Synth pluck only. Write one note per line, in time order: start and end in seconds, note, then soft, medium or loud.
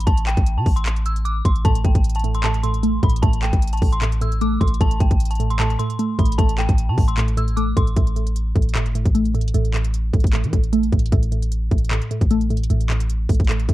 1.65 1.83 A2 loud
1.85 2.23 A2 medium
2.24 2.43 A2 medium
2.44 2.62 A2 medium
2.64 3.02 A2 medium
2.83 3.23 A3 medium
3.03 3.21 A2 medium
3.23 3.41 A2 loud
3.43 3.81 A2 medium
3.82 4.00 A2 medium
4.02 4.20 A2 medium
4.21 4.60 A2 medium
4.41 4.81 A3 medium
4.61 4.79 A2 medium
4.81 4.99 A2 loud
5.00 5.39 A2 medium
5.40 5.58 A2 medium
5.60 5.78 A2 medium
5.79 6.18 A2 medium
5.99 6.39 A3 medium
6.19 6.37 A2 medium
6.38 6.57 A2 loud
6.58 6.97 A2 medium
6.98 7.16 A2 medium
7.18 7.36 A2 medium
7.37 7.75 A2 medium
7.57 7.96 A3 medium
7.77 7.95 A2 medium
7.97 8.15 A2 medium
8.16 8.54 A2 medium
8.56 8.74 A2 medium
8.75 8.94 A2 medium
8.95 9.33 A2 medium
9.15 9.54 A3 medium
9.35 9.53 A2 medium
9.54 9.73 A2 loud
9.74 10.12 A2 medium
10.13 10.32 A2 medium
10.33 10.52 A2 medium
10.53 10.91 A2 medium
10.73 11.12 A3 medium
10.93 11.11 A2 medium
11.12 11.31 A2 loud
11.32 11.70 A2 medium
11.71 11.90 A2 medium
11.91 12.10 A2 medium
12.11 12.49 A2 medium
12.31 12.70 A3 medium
12.50 12.69 A2 medium
12.70 12.88 A2 loud
12.90 13.28 A2 medium
13.29 13.48 A2 medium
13.49 13.67 A2 medium
13.69 13.74 A2 medium